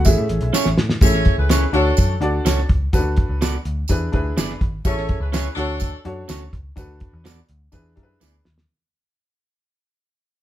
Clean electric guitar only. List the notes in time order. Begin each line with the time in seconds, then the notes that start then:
0.53 C#4 E4 G#4 C#5
1.49 C#4 E4 G#4 C#5
2.45 C#4 F#4 A4 C#5
3.41 B3 F#4 A4 D5
4.37 B3 E4 G#4 D5
5.32 C#4 E4 G#4 C#5
6.28 C#4 F#4 A4 C#5
7.24 B3 F#4 A4 D5
8.20 B3 E4 G#4 D5